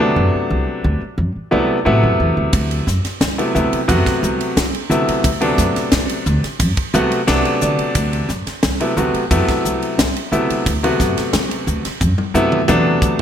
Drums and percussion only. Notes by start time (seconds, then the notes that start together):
2.53 kick, hi-hat pedal, ride
2.71 ride
2.87 snare, hi-hat pedal
3.05 snare, ride
3.21 snare, hi-hat pedal, ride
3.39 ride
3.55 hi-hat pedal
3.73 ride
3.89 kick, hi-hat pedal, ride
4.06 kick, snare, ride
4.23 hi-hat pedal
4.41 ride
4.57 snare, hi-hat pedal, ride
4.74 ride
4.91 hi-hat pedal
5.09 ride
5.24 kick, hi-hat pedal, ride
5.41 ride
5.58 kick, snare, hi-hat pedal
5.76 snare, ride
5.92 snare, hi-hat pedal, ride
6.09 ride
6.26 hi-hat pedal
6.44 snare, ride
6.60 kick, hi-hat pedal, ride
6.77 kick, ride
6.94 hi-hat pedal
7.12 ride
7.28 snare, hi-hat pedal, ride
7.45 ride
7.61 hi-hat pedal
7.79 ride
7.95 kick, hi-hat pedal, ride
8.13 ride
8.29 snare, hi-hat pedal
8.47 snare, ride
8.63 snare, hi-hat pedal, ride
8.80 ride
8.97 hi-hat pedal
9.14 ride
9.31 kick, hi-hat pedal, ride
9.49 kick, snare, ride
9.65 hi-hat pedal
9.82 ride
9.99 snare, hi-hat pedal, ride
10.16 ride
10.32 hi-hat pedal
10.50 ride
10.66 kick, hi-hat pedal, ride
10.84 ride
11.00 kick, snare, hi-hat pedal
11.18 snare, ride
11.33 snare, hi-hat pedal, ride
11.51 ride
11.67 hi-hat pedal
11.85 snare, ride
12.01 kick, hi-hat pedal
12.18 high tom
12.35 hi-hat pedal
12.52 mid tom
12.68 hi-hat pedal, mid tom
13.02 kick, hi-hat pedal